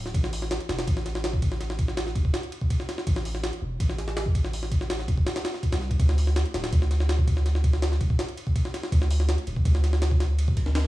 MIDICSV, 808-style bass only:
0, 0, Header, 1, 2, 480
1, 0, Start_track
1, 0, Tempo, 365854
1, 188, Time_signature, 4, 2, 24, 8
1, 14261, End_track
2, 0, Start_track
2, 0, Title_t, "808-style bass"
2, 0, Program_c, 0, 38
2, 0, Note_on_c, 0, 26, 85
2, 170, Note_off_c, 0, 26, 0
2, 189, Note_on_c, 0, 33, 101
2, 772, Note_off_c, 0, 33, 0
2, 906, Note_on_c, 0, 28, 100
2, 1123, Note_off_c, 0, 28, 0
2, 1148, Note_on_c, 0, 33, 99
2, 2809, Note_off_c, 0, 33, 0
2, 2828, Note_on_c, 0, 28, 98
2, 3044, Note_off_c, 0, 28, 0
2, 4027, Note_on_c, 0, 33, 102
2, 4611, Note_off_c, 0, 33, 0
2, 4750, Note_on_c, 0, 28, 99
2, 4965, Note_off_c, 0, 28, 0
2, 4988, Note_on_c, 0, 33, 94
2, 6649, Note_off_c, 0, 33, 0
2, 6667, Note_on_c, 0, 28, 96
2, 6884, Note_off_c, 0, 28, 0
2, 7511, Note_on_c, 0, 36, 98
2, 7849, Note_off_c, 0, 36, 0
2, 7867, Note_on_c, 0, 38, 103
2, 8450, Note_off_c, 0, 38, 0
2, 8587, Note_on_c, 0, 26, 99
2, 8804, Note_off_c, 0, 26, 0
2, 8825, Note_on_c, 0, 38, 93
2, 10487, Note_off_c, 0, 38, 0
2, 10506, Note_on_c, 0, 26, 101
2, 10723, Note_off_c, 0, 26, 0
2, 11705, Note_on_c, 0, 38, 101
2, 12290, Note_off_c, 0, 38, 0
2, 12428, Note_on_c, 0, 26, 99
2, 12644, Note_off_c, 0, 26, 0
2, 12665, Note_on_c, 0, 38, 94
2, 14261, Note_off_c, 0, 38, 0
2, 14261, End_track
0, 0, End_of_file